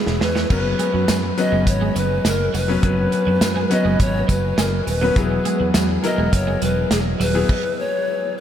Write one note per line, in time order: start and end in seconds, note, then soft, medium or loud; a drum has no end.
0.00 0.52 E3 medium
0.00 0.50 B3 medium
0.00 0.51 C#4 medium
0.00 0.37 E4 medium
0.00 0.23 G#4 medium
0.00 0.52 G#4 medium
0.07 0.18 E1 medium
0.07 snare medium
0.21 0.43 E2 medium
0.21 0.51 B4 medium
0.21 muted clean electric guitar stroke soft
0.21 snare medium
0.35 0.46 B3 medium
0.35 snare medium
0.50 0.72 F#1 loud
0.50 1.27 F#3 medium
0.50 1.27 B3 medium
0.50 1.27 C#4 medium
0.50 0.57 A#4 medium
0.50 1.15 B4 medium
0.50 kick loud
0.50 crash medium
0.50 tambourine soft
0.58 1.31 B4 medium
0.65 muted clean electric guitar stroke soft
0.79 0.90 G#3 medium
0.79 closed hi-hat medium
0.79 tambourine soft
0.94 1.05 F#2 medium
0.94 1.04 F#3 medium
1.08 1.30 F#2 medium
1.08 1.19 F#3 medium
1.08 snare loud
1.08 closed hi-hat medium
1.08 tambourine medium
1.23 muted clean electric guitar stroke soft
1.37 2.40 F#3 medium
1.37 2.40 B3 medium
1.37 2.41 C#4 medium
1.37 2.41 B4 medium
1.37 1.69 D#5 loud
1.37 closed hi-hat medium
1.37 tambourine soft
1.52 1.67 F#1 medium
1.52 1.63 G#3 medium
1.67 1.89 G#1 medium
1.67 1.99 C#5 loud
1.67 muted clean electric guitar stroke soft
1.67 kick loud
1.67 closed hi-hat medium
1.67 tambourine soft
1.81 1.92 G#3 medium
1.96 2.18 F#1 medium
1.96 2.06 F#3 medium
1.96 2.28 B4 medium
1.96 closed hi-hat medium
1.96 tambourine soft
2.25 2.47 F#1 medium
2.25 2.57 A#4 medium
2.25 snare loud
2.25 closed hi-hat medium
2.25 tambourine medium
2.54 2.76 F1 medium
2.54 2.64 F#3 medium
2.54 2.84 B4 medium
2.54 open hi-hat medium
2.54 tambourine medium
2.68 2.81 F#3 medium
2.68 2.81 B3 medium
2.68 2.82 C#4 medium
2.68 2.82 B4 medium
2.83 3.05 F#1 loud
2.83 3.60 F#3 medium
2.83 2.94 F#3 medium
2.83 3.60 B3 medium
2.83 3.60 C#4 medium
2.83 3.61 B4 medium
2.83 3.74 B4 loud
2.83 kick loud
2.83 closed hi-hat medium
3.12 muted clean electric guitar stroke soft
3.12 closed hi-hat medium
3.12 tambourine soft
3.27 3.38 F#2 medium
3.27 3.37 F#3 medium
3.41 3.63 F#2 medium
3.41 snare loud
3.41 closed hi-hat medium
3.41 tambourine medium
3.56 3.66 G#3 medium
3.70 4.73 F#3 medium
3.70 4.73 B3 medium
3.70 4.73 C#4 medium
3.70 4.74 B4 medium
3.70 4.03 D#5 medium
3.70 muted clean electric guitar stroke soft
3.70 closed hi-hat medium
3.70 tambourine soft
3.85 3.96 F#1 medium
3.85 3.95 G#3 medium
4.00 4.22 G#1 loud
4.00 4.30 C#5 medium
4.00 kick loud
4.00 closed hi-hat medium
4.00 tambourine soft
4.28 4.51 F#1 medium
4.28 4.39 F#3 medium
4.28 4.61 B4 medium
4.28 kick medium
4.28 closed hi-hat medium
4.28 tambourine medium
4.58 4.80 F#1 medium
4.58 4.68 G#3 medium
4.58 4.88 A#4 medium
4.58 snare loud
4.58 closed hi-hat medium
4.58 tambourine medium
4.87 5.09 D#1 medium
4.87 5.15 B4 medium
4.87 muted clean electric guitar stroke soft
4.87 open hi-hat medium
4.87 tambourine medium
5.01 5.14 F#3 medium
5.01 5.12 B3 medium
5.01 5.15 B3 medium
5.01 5.15 C#4 medium
5.01 5.15 B4 medium
5.16 5.38 E1 loud
5.16 5.93 F#3 medium
5.16 5.93 B3 medium
5.16 5.93 E4 medium
5.16 5.94 G#4 medium
5.16 5.73 B4 medium
5.16 kick loud
5.16 closed hi-hat medium
5.16 tambourine soft
5.31 muted clean electric guitar stroke soft
5.45 5.56 G#3 medium
5.45 closed hi-hat medium
5.45 tambourine soft
5.60 5.71 E2 medium
5.60 5.70 F#3 medium
5.74 5.97 E2 loud
5.74 5.85 F#3 medium
5.74 snare loud
5.74 closed hi-hat medium
5.74 tambourine medium
5.89 muted clean electric guitar stroke soft
6.03 7.06 F#3 medium
6.03 7.06 B3 medium
6.03 7.06 E4 medium
6.03 7.06 A#4 medium
6.03 6.32 D#5 loud
6.03 closed hi-hat medium
6.03 tambourine soft
6.18 6.29 E1 medium
6.18 6.29 G#3 medium
6.33 6.55 F#1 loud
6.33 6.65 C#5 loud
6.33 muted clean electric guitar stroke soft
6.33 kick medium
6.33 closed hi-hat medium
6.33 tambourine soft
6.47 6.58 G#3 medium
6.62 6.84 E1 medium
6.62 6.72 F#3 medium
6.62 6.92 B4 medium
6.62 closed hi-hat medium
6.62 tambourine soft
6.91 7.13 E1 loud
6.91 6.99 G#4 medium
6.91 snare loud
6.91 closed hi-hat medium
6.91 tambourine medium
7.20 7.42 D#1 medium
7.20 7.30 F#3 medium
7.20 7.81 B4 loud
7.20 open hi-hat medium
7.20 tambourine medium
7.34 7.47 F#3 medium
7.34 7.48 B3 medium
7.34 7.48 E4 medium
7.34 7.48 G#4 medium
7.49 kick loud
7.49 crash medium
7.80 8.37 C#5 loud